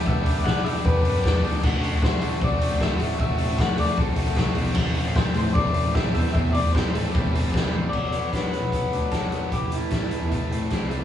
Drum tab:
CC |----------------|x---------------|----------------|x---------------|
HH |--o---o---o---o-|--o---o---o---o-|--o---o---o---o-|--o---o---o---o-|
SD |----o-------o---|----o-------o---|----o-------o--o|----o-------o--o|
T1 |----------------|----------------|----------------|----------------|
BD |o---o---o---o---|o---o---o---o---|o---o---o---o---|o---o---o---o---|

CC |----------------|x---------------|----------------|
HH |--o---o---o-----|--x-x-x-x-x-x-x-|x-x-x-x-x-x-x-x-|
SD |----o-------o---|----o-------o---|----o-------o---|
T1 |--------------o-|----------------|----------------|
BD |o---o---o---o---|o---o---o---o---|o---o---o---o---|